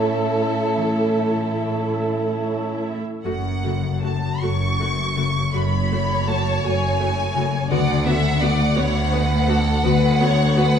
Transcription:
0.00 2.07 A2 soft
0.00 2.99 A2 soft
0.00 1.16 A3 soft
0.00 2.86 A3 soft
0.00 2.89 A3 soft
0.00 1.59 C#4 soft
0.00 2.85 C#4 soft
0.00 2.85 E4 soft
0.00 2.99 E4 soft
0.00 0.34 A4 soft
0.00 2.01 A4 soft
0.00 3.03 A4 soft
0.00 2.99 E5 soft
0.00 2.86 A5 soft
0.36 2.00 A4 soft
0.76 3.28 E3 soft
1.18 4.78 A3 soft
1.60 2.42 C#4 soft
2.01 2.83 A4 soft
2.43 6.33 C#4 soft
2.84 6.74 A4 soft
3.24 4.28 F#1 soft
3.24 4.28 F#2 medium
3.24 5.52 F#2 soft
3.24 3.33 A3 soft
3.24 3.33 F#4 soft
3.24 3.99 F#5 medium
3.63 5.15 C#3 soft
3.63 3.72 A3 soft
3.63 3.71 F#4 soft
4.03 4.11 A3 soft
4.03 4.11 F#4 soft
4.03 6.27 F#4 soft
4.03 4.42 A5 medium
4.41 5.40 F#1 medium
4.41 5.40 F#2 medium
4.41 4.49 A3 soft
4.41 4.49 F#4 soft
4.41 6.63 C#5 soft
4.41 5.54 C#6 medium
4.79 5.90 A3 soft
4.79 4.87 A3 soft
4.79 4.87 F#4 soft
5.16 7.34 C#3 soft
5.16 5.24 A3 soft
5.16 5.24 F#4 soft
5.53 6.52 F#1 medium
5.53 6.51 F#2 medium
5.53 7.74 F#2 soft
5.53 5.61 A3 soft
5.53 5.61 F#4 soft
5.53 7.67 C#5 medium
5.53 6.28 B5 medium
5.91 5.99 A3 soft
5.91 6.99 A3 soft
5.91 5.99 F#4 soft
6.27 6.35 A3 soft
6.27 6.35 F#4 soft
6.27 8.41 F#4 soft
6.27 6.64 A5 medium
6.63 7.59 F#1 medium
6.63 7.58 F#2 medium
6.63 6.72 A3 soft
6.63 6.72 F#4 soft
6.63 7.74 C#5 soft
6.63 7.71 G#5 medium
7.00 7.74 A3 soft
7.00 7.08 A3 soft
7.00 7.08 F#4 soft
7.34 7.74 C#3 soft
7.34 7.42 A3 medium
7.34 7.42 F#4 soft
7.70 8.65 D2 medium
7.70 9.83 D3 medium
7.70 7.79 B3 medium
7.70 7.79 F#4 medium
7.70 8.06 D5 medium
7.70 10.79 F#5 medium
8.06 8.14 B3 medium
8.06 9.48 D4 soft
8.06 8.14 F#4 medium
8.06 8.42 E5 medium
8.41 8.49 B3 medium
8.41 8.49 F#4 medium
8.41 10.55 F#4 soft
8.41 8.78 D5 medium
8.76 9.72 D2 medium
8.76 8.84 B3 medium
8.76 8.84 F#4 medium
8.76 10.79 B4 medium
8.76 9.13 C#5 medium
9.12 9.20 B3 medium
9.12 10.20 B3 soft
9.12 9.20 F#4 medium
9.12 9.49 B4 medium
9.48 9.56 B3 medium
9.48 10.79 D4 medium
9.48 9.56 F#4 medium
9.48 9.85 A4 medium
9.84 10.79 D2 medium
9.84 10.79 D3 medium
9.84 9.92 B3 medium
9.84 9.92 F#4 medium
9.84 10.21 B4 medium
10.20 10.28 B3 medium
10.20 10.79 B3 medium
10.20 10.28 F#4 medium
10.20 10.57 C#5 medium
10.56 10.64 B3 medium
10.56 10.64 F#4 medium
10.56 10.79 F#4 medium
10.56 10.79 B4 medium

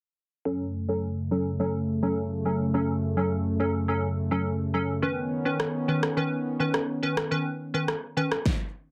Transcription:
0.45 4.99 F#2 medium
0.45 4.99 C#3 medium
0.45 0.64 F#3 medium
0.45 4.99 A3 medium
0.45 0.65 C#4 medium
0.45 0.65 A4 loud
0.88 1.07 F#3 medium
0.88 1.08 C#4 medium
0.88 1.08 A4 medium
1.31 1.50 F#3 medium
1.31 1.50 C#4 medium
1.31 1.50 A4 medium
1.60 1.79 F#3 medium
1.60 1.79 C#4 medium
1.60 1.79 A4 loud
2.03 2.22 F#3 medium
2.03 2.22 C#4 medium
2.03 2.22 A4 medium
2.45 2.64 F#3 medium
2.45 2.65 C#4 medium
2.45 2.65 A4 medium
2.74 2.93 F#3 medium
2.74 2.93 C#4 medium
2.74 2.93 A4 loud
3.17 3.36 F#3 medium
3.17 3.36 C#4 medium
3.17 3.36 A4 medium
3.60 3.79 F#3 medium
3.60 3.79 C#4 medium
3.60 3.79 A4 medium
3.88 4.07 F#3 medium
3.88 4.07 C#4 medium
3.88 4.08 A4 loud
4.31 4.50 F#3 medium
4.31 4.50 C#4 medium
4.31 4.50 A4 medium
4.74 4.93 F#3 medium
4.74 4.93 C#4 medium
4.74 4.93 A4 medium
5.02 5.22 D#3 medium
5.02 8.42 D#3 medium
5.02 8.42 B3 medium
5.02 8.42 C#4 medium
5.02 5.22 C#4 medium
5.02 5.22 B4 loud
5.45 5.64 D#3 medium
5.45 5.65 C#4 medium
5.45 5.65 B4 medium
5.60 cross-stick medium
5.88 6.07 D#3 medium
5.88 6.07 C#4 medium
5.88 6.08 B4 medium
6.03 cross-stick medium
6.17 6.36 D#3 medium
6.17 6.36 C#4 medium
6.17 6.36 B4 loud
6.60 6.79 D#3 medium
6.60 6.79 C#4 medium
6.60 6.79 B4 medium
6.74 cross-stick medium
7.03 7.22 D#3 medium
7.03 7.22 C#4 medium
7.03 7.22 B4 medium
7.17 cross-stick loud
7.31 7.50 D#3 medium
7.31 7.50 C#4 medium
7.31 7.50 B4 loud
7.74 7.93 D#3 medium
7.74 7.93 C#4 medium
7.74 7.93 B4 medium
7.88 cross-stick medium
8.17 8.36 D#3 medium
8.17 8.36 C#4 medium
8.17 8.36 B4 medium
8.32 cross-stick medium
8.46 kick loud
8.46 snare medium

